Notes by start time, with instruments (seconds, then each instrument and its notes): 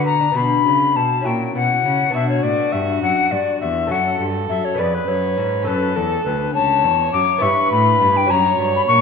Already playing: lute D3 F#4, cello D3
0.06 lute B3, recorder A#5
0.21 lute D4
0.32 cello B2, lute B3 D4 F#4
0.36 lute B2, recorder B5
0.66 cello C#3, lute C#3
0.95 cello B2, lute B2, recorder A5
1.21 cello A#2, lute C#4 E4 F#4
1.26 lute A#2, violin F#4, recorder G5
1.55 cello B2, lute B2, recorder F#5
1.84 cello C#3, lute C#3
2.10 cello B2, lute B3 D4 F#4
2.14 lute B2, recorder E5
2.29 recorder C#5
2.43 cello A2, lute A2, recorder D5
2.72 cello G2, lute G2, recorder E5
3.02 cello F#2, lute F#2, recorder F#5
3.31 cello G2, lute G2, recorder D5
3.61 cello E2, lute E2, recorder E5
3.87 cello F#2, lute A3 C#4 F#4
3.91 lute F#2, violin A4, recorder F#5
4.20 cello G2, lute G2
4.49 cello F#2, lute F#2, recorder E5
4.65 recorder C#5
4.74 cello F2, lute B3 C#4 G#4, recorder D5
4.79 lute F2, violin B4
4.94 recorder B4
5.08 cello F#2, lute F#2, recorder C#5
5.37 cello G#2, lute G#2
5.62 lute C#4 A4
5.67 cello F#2, lute F#2, violin A4, recorder B4
5.96 cello E2, lute E2, recorder A4
6.25 cello D2, lute D2, recorder B4
6.55 cello C#2, violin C#5, recorder A5
6.83 cello E2, lute E2
7.13 cello F#2, lute F#2, recorder D6
7.38 cello G2, lute B3 E4 E5, recorder C#6
7.42 lute G2, violin B4
7.71 cello A2, lute A2, recorder B5
8.01 cello G2, lute G2
8.17 recorder G5
8.26 cello F#2, lute C#4 F#4 C#5, recorder A#5
8.31 lute F#2, violin C#5
8.60 cello G2, lute G2
8.76 recorder B5
8.88 cello A#2, lute A#2, recorder C#6